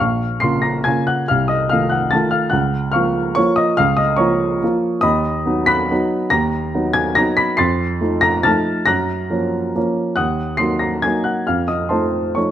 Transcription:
0.00 A#1 F5 C#6 F6
0.40 C#3 A#3 F4 C6 C7
0.62 A#5 A#6
0.84 C#3 A#3 F4 G#5 G#6
1.07 F#5 F#6
1.28 C2 F5 F6
1.48 D#5 D#6
1.69 D#3 A3 F4 F5 F6
1.90 F#5 F#6
2.11 D#3 A3 F4 A5 A6
2.31 F5 F6
2.50 C#2 F#5 F#6
2.92 F3 A#3 F4 F5 C#6 F6
3.35 F3 A#3 F4 C#5 C#6
3.56 D#5 D#6
3.77 C#2 F5 F6
3.97 D#5 D#6
4.17 F3 A#3 F4 C#5 A#5 C#6
4.63 F3 A#3 F4
5.01 D#2 D#5 B5 D#6
5.46 F#3 B3 D#4
5.66 B5 F#6 B6
5.91 F#3 B3 D#4
6.30 D#2 A#5 A#6
6.75 F#3 B3 D#4
6.93 G#5 G#6
7.15 F#3 B3 D#4 A#5 A#6
7.37 B5 B6
7.57 F2 C6 A6 C7
8.01 F3 A3 D#4
8.21 A#5 A#6
8.43 F3 A3 D#4 A5 F6 A6
8.86 F#2 A#5 F#6 A#6
9.30 F3 A#3 C#4
9.76 F3 A#3 C#4
10.16 D#2 F#5 D#6 F#6
10.57 F#3 A#3 D#4 C6 C7
10.79 A#5 A#6
11.02 F#3 A#3 D#4 G#5 G#6
11.24 F#5 F#6
11.47 F2 F5 F6
11.68 D#5 D#6
11.89 F3 A3 D#4 C5 A5 C6
12.35 F3 A3 D#4 C#5 C#6

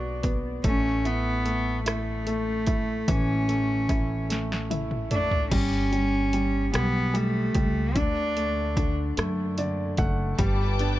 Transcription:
Already playing: B1 F#3 B3 D4 F#4
0.23 B3, kick, closed hi-hat
0.64 A1 A3 C#4, kick, closed hi-hat
1.05 B3 E4, closed hi-hat
1.45 A3, closed hi-hat
1.86 A3 E4, cross-stick, closed hi-hat
2.27 A3, closed hi-hat
2.67 E4, kick, closed hi-hat
3.08 A1 E3 C#4, kick, closed hi-hat
3.49 A3, closed hi-hat
3.89 E4, kick, cross-stick, closed hi-hat
4.29 A3, snare, closed hi-hat
4.52 snare
4.70 E4, closed hi-hat, high tom
4.91 mid tom
5.11 A3 D4, closed hi-hat, mid tom
5.31 floor tom
5.51 G1 G3 C#4, kick, closed hi-hat, crash
5.92 G3, closed hi-hat
6.33 G3, closed hi-hat
6.73 B1 G3 B3, cross-stick, closed hi-hat
7.14 G3 A3, closed hi-hat
7.55 C#2 G3, kick, closed hi-hat
7.96 D2 D3 D4, kick, closed hi-hat
8.37 A3, closed hi-hat
8.77 D3, kick, closed hi-hat
9.17 F#2 A3, cross-stick, closed hi-hat
9.58 D3 D5, closed hi-hat
9.97 F#1 A3 F#5, kick, closed hi-hat
10.39 G1 G3 B4 G5 A5 D6, kick, closed hi-hat
10.79 B3 D4, closed hi-hat

